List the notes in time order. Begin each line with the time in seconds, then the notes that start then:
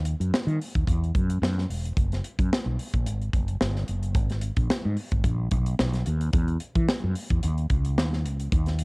Already playing: D#2
0.05 closed hi-hat
0.20 F#2, closed hi-hat
0.33 muted fretless electric bass stroke, snare
0.47 D#3, closed hi-hat
0.62 open hi-hat
0.75 D#2, kick, closed hi-hat
0.88 E2, kick, closed hi-hat
1.04 closed hi-hat
1.15 F#2, kick, closed hi-hat
1.30 closed hi-hat
1.42 F#2, snare
1.58 snare
1.70 E1, open hi-hat
1.85 closed hi-hat
1.97 F#1, kick, closed hi-hat
2.12 snare, closed hi-hat
2.24 closed hi-hat
2.39 F#2, kick, closed hi-hat
2.53 snare
2.66 B1
2.79 open hi-hat
2.94 A#1, kick, closed hi-hat
3.06 G#1, closed hi-hat
3.21 closed hi-hat
3.33 F#1, kick, closed hi-hat
3.48 closed hi-hat
3.61 G1, snare
3.76 snare
3.88 F#1, closed hi-hat
4.03 closed hi-hat
4.15 G#1, kick, closed hi-hat
4.30 snare, closed hi-hat
4.41 closed hi-hat
4.57 A#1, kick, closed hi-hat
4.70 snare
4.85 G#2
4.97 open hi-hat
5.11 G#1, kick, closed hi-hat
5.24 A#1, kick, closed hi-hat
5.51 B1, kick, closed hi-hat
5.66 closed hi-hat
5.79 B1, snare
5.94 snare, closed hi-hat
6.06 D#2, closed hi-hat
6.21 closed hi-hat
6.33 E2, kick, closed hi-hat
6.48 closed hi-hat
6.60 closed hi-hat
6.75 E3, kick, closed hi-hat
6.89 snare
7.04 F#2
7.16 open hi-hat
7.30 E2, kick, closed hi-hat
7.43 D#2, closed hi-hat
7.58 closed hi-hat
7.70 C#2, kick, closed hi-hat
7.85 closed hi-hat
7.98 D#2, snare
8.13 snare
8.25 C#2, closed hi-hat
8.40 closed hi-hat
8.52 D#2, kick, closed hi-hat
8.66 snare, closed hi-hat
8.79 closed hi-hat